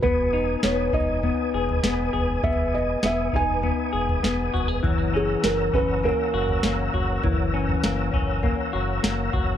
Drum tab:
SD |----o-------o---|----o-------o---|----o-------o---|----o-------o---|
FT |o-----o-o--o--o-|o-----o-o--o--o-|o-----o-o--o--o-|o--o--o-o-----o-|
BD |o-----o---------|o-----o---------|o-----o---------|o-----o-o-----o-|